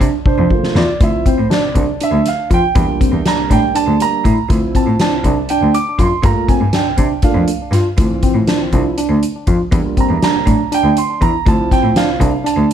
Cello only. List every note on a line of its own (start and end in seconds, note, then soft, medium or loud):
0.00 0.08 C3 medium
0.38 0.46 F2 medium
0.75 0.83 E2 medium
1.00 1.08 D2 medium
1.38 1.46 A2 medium
1.76 1.84 C2 medium
2.12 2.20 D2 medium
2.51 2.59 F2 medium
2.75 2.83 E2 medium
3.12 3.20 E2 medium
3.50 3.58 A2 medium
3.87 3.95 D2 medium
4.25 4.33 A2 loud
4.49 4.57 D2 medium
4.87 4.95 A2 medium
5.24 5.32 C2 medium
5.62 5.70 D2 medium
5.99 6.07 F#2 medium
6.23 6.31 G2 medium
6.61 6.69 G2 medium
6.97 7.05 C3 medium
7.35 7.43 F2 medium
7.71 7.79 G2 medium
7.97 8.05 D2 medium
8.34 8.42 A2 medium
8.72 8.80 C2 medium
9.09 9.17 D2 medium
9.48 9.56 F2 medium
9.72 9.80 E2 medium
10.10 10.18 E2 medium
10.46 10.54 A2 medium
10.84 10.92 D2 medium
11.21 11.29 E2 medium
11.46 11.54 D2 medium
11.83 11.91 A2 medium
12.20 12.28 C2 medium
12.57 12.65 D2 medium